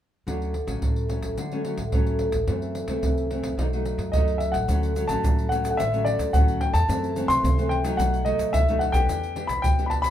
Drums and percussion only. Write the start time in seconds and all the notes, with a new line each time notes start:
0.28 pandeiro, surdo
0.42 pandeiro
0.54 pandeiro
0.68 pandeiro, surdo
0.82 pandeiro, surdo
0.96 pandeiro
1.09 pandeiro, surdo
1.22 pandeiro
1.38 pandeiro, surdo
1.52 pandeiro
1.64 pandeiro
1.78 pandeiro, surdo
1.92 pandeiro, surdo
2.06 pandeiro
2.19 pandeiro, surdo
2.32 pandeiro, surdo
2.47 pandeiro, surdo
2.62 pandeiro
2.75 pandeiro
2.88 pandeiro, surdo
3.03 pandeiro, surdo
3.17 pandeiro
3.31 pandeiro, surdo
3.44 pandeiro
3.59 pandeiro, surdo
3.73 pandeiro
3.85 pandeiro
3.99 pandeiro, surdo
4.13 pandeiro, surdo
4.28 pandeiro
4.40 pandeiro
4.54 pandeiro, surdo
4.69 pandeiro, shaker, surdo
4.83 pandeiro, shaker
4.96 pandeiro, shaker
5.09 pandeiro, shaker, surdo
5.24 pandeiro, shaker, surdo
5.39 pandeiro, shaker
5.52 pandeiro, shaker, surdo
5.65 pandeiro, shaker
5.80 pandeiro, shaker, surdo
5.94 pandeiro, shaker
6.06 pandeiro
6.19 pandeiro, shaker, surdo
6.34 pandeiro, shaker, surdo
6.48 pandeiro, shaker
6.61 pandeiro
6.74 pandeiro, shaker, surdo
6.89 pandeiro, shaker, surdo
7.04 pandeiro, shaker
7.16 pandeiro, shaker
7.30 pandeiro, shaker, surdo
7.45 pandeiro, shaker, surdo
7.59 pandeiro, shaker
7.71 pandeiro, surdo
7.84 pandeiro, shaker
8.00 pandeiro, shaker, surdo
8.14 pandeiro, shaker
8.26 pandeiro
8.39 pandeiro, shaker, surdo
8.54 pandeiro, shaker, surdo
8.69 pandeiro, shaker
8.81 pandeiro
8.94 pandeiro, shaker, surdo
9.09 pandeiro, shaker, surdo
9.23 pandeiro, shaker
9.36 pandeiro
9.49 pandeiro, shaker, surdo
9.64 pandeiro, shaker, surdo
9.79 pandeiro, shaker
9.91 pandeiro, surdo
10.04 pandeiro, shaker